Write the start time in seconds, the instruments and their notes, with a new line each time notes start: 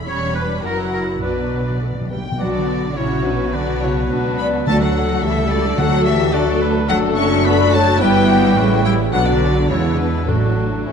Already playing: violin section B5
0.08 double bass section E1, cello section E2, viola section G3 C#4, violin section C#5, oboe C#5
0.35 viola section D4, oboe B4, violin section B4
0.65 double bass section F#1, cello section F#2, viola section F#3 E4, violin section A#4 F#5, oboe A#4
0.94 violin section A#4, oboe A#4
1.22 double bass section B1, timpani B2, cello section B2, viola section F#3 D4, violin section B4 D5, oboe B4
1.46 timpani B2
1.54 timpani B2
1.62 timpani B2
1.70 timpani B2
1.77 timpani B2
1.82 timpani B2, viola section A3
1.93 timpani B2
2.01 timpani B2
2.09 timpani B2, cello section G3, viola section G3, flute section B4, violin section G5
2.16 timpani B2
2.24 timpani B2
2.32 timpani B2
2.39 double bass section B1, cello section F#3, viola section F#3 B3, french horn section B3 F#4, violin section D4 F#4 F#5, flute section B4, oboe D5
2.53 cello section D3, flute section F#4, violin section D5
2.96 double bass section A#1, cello section C#3, viola section F#3 C#4, french horn section C#4, flute section E4, violin section E4 F#4 C#5, oboe C#5
3.24 cello section B2, flute section D4, violin section B4
3.53 double bass section B1, cello section D3, viola section F#3 B3, french horn section B3, violin section D4 F#4 D5, flute section F#4, oboe B4
3.82 cello section C#3, flute section E4, violin section C#5
4.09 double bass section C#2, cello section B2, viola section F#3 B3, violin section D4 F#4 B4, flute section D4
4.38 cello section B3, flute section D5, violin section B5
4.66 double bass section D2, timpani D3, viola section F#3 A3, french horn section A3 F#4, cello section A3, violin section D4 F#4 A5, oboe A4, flute section D5
4.81 cello section F#3, flute section A4, violin section F#5
5.22 double bass section C#2, cello section E3, viola section G3 A3, violin section E4 A4 E5, french horn section G4, flute section G4
5.50 cello section D3, flute section F#4, violin section D5
5.77 double bass section D2, timpani D3, viola section F#3 A3, cello section F#3, violin section D4 A4 F#5, french horn section F#4, oboe A4, flute section A4
6.06 cello section E3, flute section G4, violin section E5
6.32 cello section D3, viola section F#3 A3, violin section D4 A4 D5, oboe F#4
6.36 flute section F#4
6.61 oboe B4
6.88 double bass section F#1, viola section F#3 A3, cello section F#3, french horn section A3 D4, violin section D4 A4 F#5, oboe A4, flute section A4
7.16 cello section C#4, flute section E5, violin section C#6
7.45 cello section B3, oboe F#4, flute section D5, violin section B5
7.73 cello section A3, flute section C#5, violin section A5
8.00 double bass section G1, viola section E3 B3, cello section G3, french horn section B3 E4, violin section E4 G4 G5, oboe B4, flute section B4
8.28 violin section F#4, oboe G4
8.55 double bass section A1, viola section C#3 A3, french horn section C#4 E4, violin section E4, oboe F#4
8.84 cello section G3, viola section G3, oboe E4, flute section B4, violin section G5
9.12 double bass section B1, viola section D3 F#3, cello section F#3, violin section B3 D4 F#5, french horn section D4 F#4, oboe D4, flute section B4
9.26 cello section D3, flute section F#4, violin section D5
9.69 double bass section E2, cello section C#3, viola section E3 G#3, violin section B3 D4 C#5, french horn section D4 G#4, flute section E4, oboe E4
9.98 cello section B2, flute section D4, violin section B4
10.27 double bass section A1, cello section A2, timpani A2, viola section F#3 A3, french horn section D4 F#4, violin section D4 A4, flute section D4, oboe F#4
10.86 double bass section A1, viola section E3 A3, french horn section C#4 E4, violin section C#4 E4